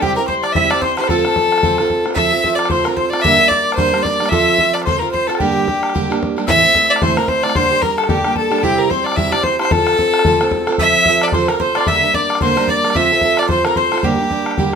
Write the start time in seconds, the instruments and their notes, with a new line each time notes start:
0.01 steel-string acoustic guitar C3 G3 C4 E4 G4, fiddle G4, mandolin G4, tin whistle G5, bodhran
0.16 steel-string acoustic guitar C4 E4 G4, mandolin A#4, fiddle A#4, tin whistle A#5
0.27 steel-string acoustic guitar G3 C4 E4 G4, fiddle C5, mandolin C5, tin whistle C6 D6, bodhran
0.42 fiddle D5, mandolin D5, tin whistle D6, bodhran
0.52 steel-string acoustic guitar C3 G3 C4 E4, fiddle E5, mandolin E5, tin whistle E6, bodhran
0.57 steel-string acoustic guitar G4
0.70 steel-string acoustic guitar C4 E4 G4, fiddle D5, mandolin D5, bodhran
0.81 fiddle C5, mandolin C5, tin whistle C6, bodhran
0.96 steel-string acoustic guitar E4 G4, fiddle C5, mandolin C5, tin whistle C6, bodhran
1.01 steel-string acoustic guitar C4, bodhran
1.08 steel-string acoustic guitar F3 C4 F4 A4, fiddle A4, mandolin A4, tin whistle A5, bodhran
1.25 steel-string acoustic guitar C4 F4 A4, bodhran
1.36 steel-string acoustic guitar F3 C4 A4, bodhran
1.52 bodhran
1.58 bodhran
1.63 steel-string acoustic guitar F3 C4 F4 A4, bodhran
1.78 steel-string acoustic guitar C4 F4 A4, bodhran
1.90 bodhran
2.06 steel-string acoustic guitar C4 F4 A4, bodhran
2.11 fiddle E5, bodhran
2.16 steel-string acoustic guitar F3 C4 F4 A4, mandolin E5, tin whistle E6, bodhran
2.33 steel-string acoustic guitar C4 F4 A4
2.43 steel-string acoustic guitar F3 C4 F4 A4, tin whistle E6, bodhran
2.55 fiddle D5, mandolin D5
2.59 tin whistle D6, bodhran
2.65 fiddle C5, bodhran
2.70 steel-string acoustic guitar F3 C4 F4 A4, mandolin C5, tin whistle C6, bodhran
2.84 steel-string acoustic guitar C4 F4 A4, fiddle A#4, mandolin A#4, tin whistle A#5, bodhran
2.96 fiddle C5, mandolin C5, tin whistle C6, bodhran
3.10 steel-string acoustic guitar F4 A4, fiddle D5, mandolin D5, bodhran
3.14 steel-string acoustic guitar C4, tin whistle D6
3.20 steel-string acoustic guitar G2, fiddle E5, bodhran
3.24 steel-string acoustic guitar D3 G3 A#3 D4 A#4, mandolin E5, tin whistle E6, bodhran
3.39 steel-string acoustic guitar G3 A#3 D4 A#4
3.48 steel-string acoustic guitar G3, fiddle D5, mandolin D5, tin whistle D6, bodhran
3.53 steel-string acoustic guitar D4 A#4
3.67 tin whistle D6
3.72 fiddle C5, bodhran
3.77 steel-string acoustic guitar G2 D3 G3 A#3 D4 A#4, mandolin C5, tin whistle C6, bodhran
3.89 mandolin C5
3.93 steel-string acoustic guitar G3 A#3 D4 A#4, bodhran
3.98 mandolin C5
4.02 fiddle D5, mandolin D5, tin whistle D6, bodhran
4.20 steel-string acoustic guitar G3 A#3 D4 A#4, bodhran
4.26 fiddle E5, bodhran
4.31 steel-string acoustic guitar F3 C4 F4 A4, mandolin E5, tin whistle E6, bodhran
4.58 steel-string acoustic guitar F3 C4 F4 A4, bodhran
4.73 fiddle D5, mandolin D5, bodhran
4.82 fiddle C5, tin whistle C6, bodhran
4.86 steel-string acoustic guitar F3 C4 F4 A4, mandolin C5, bodhran
4.99 steel-string acoustic guitar F4 A4, fiddle A#4, mandolin A#4, tin whistle A#5
5.03 steel-string acoustic guitar C4
5.11 fiddle C5, mandolin C5, tin whistle C6, bodhran
5.27 steel-string acoustic guitar C4 F4 A4, fiddle A4, mandolin A4, tin whistle A5, bodhran
5.35 fiddle G4, tin whistle G5, bodhran
5.40 steel-string acoustic guitar G2 D3 G3 A#3 D4 G4, mandolin G4, bodhran
5.67 steel-string acoustic guitar G3 A#3 D4 G4, bodhran
5.83 bodhran
5.89 bodhran
5.94 steel-string acoustic guitar G2 D3 G3 A#3 D4 G4, bodhran
6.10 steel-string acoustic guitar G3 A#3 D4 G4, bodhran
6.23 bodhran
6.37 steel-string acoustic guitar G3 A#3 D4 G4, bodhran
6.47 steel-string acoustic guitar A2 E3 A3 C4 E4 A4, fiddle E5, tin whistle E6, bodhran
6.63 steel-string acoustic guitar A3 C4 E4 A4
6.74 steel-string acoustic guitar A3 C4 E4 A4, bodhran
6.89 fiddle D5, tin whistle D6
6.96 bodhran
7.01 steel-string acoustic guitar A2 E3 A3 C4 E4 A4, fiddle C5, tin whistle C6, bodhran
7.16 steel-string acoustic guitar A3 C4 E4 A4, fiddle A#4, tin whistle A#5, bodhran
7.28 fiddle C5, tin whistle C6, bodhran
7.43 steel-string acoustic guitar A3 C4 E4 A4, fiddle D5, tin whistle D6, bodhran
7.50 bodhran
7.55 steel-string acoustic guitar A#2 D3 G3 A#3 D4 G4, fiddle C5, tin whistle C6, bodhran
7.72 steel-string acoustic guitar G3 A#3 D4 G4
7.82 steel-string acoustic guitar G3 A#3 D4 G4, fiddle A#4, tin whistle A#5, bodhran
7.97 fiddle A4, tin whistle A5, bodhran
8.04 bodhran
8.08 steel-string acoustic guitar A#2 D3 G3 A#3 D4 G4, fiddle G4, tin whistle G5, bodhran
8.24 steel-string acoustic guitar G3 A#3 D4 G4, tin whistle G5, bodhran
8.35 fiddle A4, tin whistle A5, bodhran
8.51 steel-string acoustic guitar G3 A#3 D4 G4, bodhran
8.58 bodhran
8.62 steel-string acoustic guitar C3 G3 C4 E4 G4, fiddle G4, tin whistle G5, bodhran
8.78 fiddle A#4, tin whistle A#5
8.89 steel-string acoustic guitar G3 C4 E4 G4, fiddle C5, tin whistle C6, bodhran
9.04 fiddle D5, tin whistle D6, bodhran
9.12 tin whistle E6, bodhran
9.16 steel-string acoustic guitar C3 G3 C4 E4 G4, fiddle E5, bodhran
9.31 steel-string acoustic guitar C4 E4 G4, fiddle D5, tin whistle D6, bodhran
9.43 fiddle C5, tin whistle C6, bodhran
9.59 steel-string acoustic guitar C4 E4 G4, fiddle C5, tin whistle C6, bodhran
9.65 bodhran
9.71 steel-string acoustic guitar F3 C4 F4 A4, fiddle A4, tin whistle A5, bodhran
9.87 bodhran
9.97 steel-string acoustic guitar F3 C4 F4 A4, bodhran
10.14 bodhran
10.19 bodhran
10.25 steel-string acoustic guitar F3 C4 F4 A4, bodhran
10.40 steel-string acoustic guitar C4 F4 A4, bodhran
10.51 bodhran
10.67 steel-string acoustic guitar C4 F4 A4, bodhran
10.72 bodhran
10.78 steel-string acoustic guitar F3 C4 F4 A4, mandolin E5, fiddle E5, tin whistle E6, bodhran
11.06 steel-string acoustic guitar F3 C4 F4 A4, bodhran
11.21 mandolin D5, fiddle D5, tin whistle D6, bodhran
11.28 bodhran
11.32 steel-string acoustic guitar F3 C4 F4 A4, fiddle C5, mandolin C5, tin whistle C6, bodhran
11.48 steel-string acoustic guitar C4 F4 A4, mandolin A#4, fiddle A#4, tin whistle A#5, bodhran
11.60 mandolin C5, fiddle C5, tin whistle C6, bodhran
11.75 steel-string acoustic guitar C4 F4 A4, mandolin D5, fiddle D5, bodhran
11.81 bodhran
11.87 steel-string acoustic guitar G2 D3 G3 A#3 D4 A#4, fiddle E5, mandolin E5, tin whistle E6, bodhran
12.02 steel-string acoustic guitar G3 A#3 D4 A#4
12.14 steel-string acoustic guitar G3 A#3 D4 A#4, mandolin D5, fiddle D5, tin whistle D6, bodhran
12.30 bodhran
12.35 bodhran
12.41 steel-string acoustic guitar G2 D3 G3 A#3 D4 A#4, fiddle C5, mandolin C5, tin whistle C6, bodhran
12.57 steel-string acoustic guitar G3 A#3 D4 A#4, bodhran
12.68 mandolin D5, fiddle D5, tin whistle D6, bodhran
12.85 steel-string acoustic guitar G3 A#3 D4 A#4, bodhran
12.90 bodhran
12.94 steel-string acoustic guitar F3 C4 F4 A4, mandolin E5, fiddle E5, tin whistle E6, bodhran
13.12 steel-string acoustic guitar C4 A4
13.21 steel-string acoustic guitar F3 C4 F4 A4, bodhran
13.37 fiddle D5, mandolin D5, bodhran
13.43 bodhran
13.49 steel-string acoustic guitar F3 C4 F4 A4, mandolin C5, fiddle C5, tin whistle C6, bodhran
13.65 steel-string acoustic guitar C4 F4 A4, fiddle A#4, mandolin A#4, tin whistle A#5, bodhran
13.76 mandolin C5, fiddle C5, tin whistle C6, bodhran
13.92 steel-string acoustic guitar C4 F4 A4, bodhran
13.98 bodhran
14.03 steel-string acoustic guitar G2 D3 G3 A#3 D4 G4, mandolin G4, fiddle G4, tin whistle G5, bodhran
14.19 steel-string acoustic guitar G3 A#3 D4 G4
14.30 steel-string acoustic guitar G3 A#3 D4 G4, bodhran
14.46 bodhran
14.51 bodhran
14.58 steel-string acoustic guitar G2 D3 G3 A#3 D4 G4, bodhran